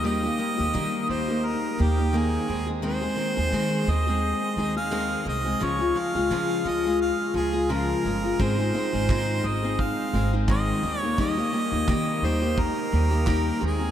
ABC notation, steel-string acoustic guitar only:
X:1
M:4/4
L:1/16
Q:"Swing 16ths" 1/4=86
K:Ab
V:1 name="Steel-string acoustic guitar"
[E,G,B,EG] [B,EG] [G,B,EG] [B,EG] [E,G,B,EG]2 [G,B,EG] [B,EG]3 [G,B,EG] [B,EG] [E,B,E]2 [E,A,CA] [A,CA] | [E,A,CA] [A,CA] [E,A,CA] [A,CA] [E,A,CA]2 [E,A,CA] [A,CA]3 [E,A,CA] [A,CA] [E,A,CA]2 [E,A,CA] [A,CA] | [D,F,A,FA] [A,FA] [F,A,FA] [A,FA] [D,F,A,FA]2 [F,A,FA] [A,FA]3 [F,A,FA] [A,FA] [D,F,A,FA]2 [F,A,FA] [A,FA] | [A,,E,A,CEA] [A,CEA] [A,CEA] [A,CEA] [A,,E,A,CEA]2 [A,CEA] [A,CEA]3 [A,CEA] [A,CEA] [A,,E,A,CEA]2 [G,B,EG] [B,EG] |
[E,G,B,EG] [B,EG] [G,B,EG] [B,EG] [E,G,B,EG]2 [G,B,EG] [B,EG]3 [G,B,EG] [B,EG] [E,G,B,EG]2 [E,A,CA] [A,CA] |]